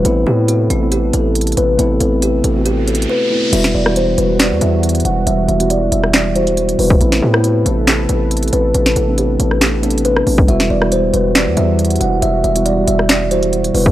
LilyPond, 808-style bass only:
\new Staff \with { instrumentName = "808-style bass" } { \clef bass \time 4/4 \key e \minor \tempo 4 = 138 a,,8 a,4 a,,4 a,,4 a,,8 | a,,8 a,,4 a,,4. r4 | e,,8 e,,4 e,,8. e,16 e,4 e,,8 | e,,8 e,,4 e,,2 e,,8 |
a,,8 a,4 a,,4 a,,4 a,,8 | a,,8 a,,4 a,,2 a,,8 | e,,8 e,,4 e,,8. e,16 e,4 e,,8 | e,,8 e,,4 e,,2 e,,8 | }